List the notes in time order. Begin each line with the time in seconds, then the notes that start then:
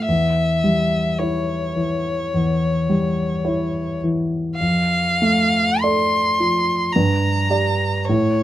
0.05 E2 E5
0.64 G3
1.19 E4 C#5
1.76 E3
2.34 E2
2.89 G3
3.45 E4 C#5
4.03 E3
4.57 F2 F5
5.22 A3
5.81 A4 D5 C6
6.40 F3
6.92 G2 A#5
7.50 G4 D5
8.05 A2 C#5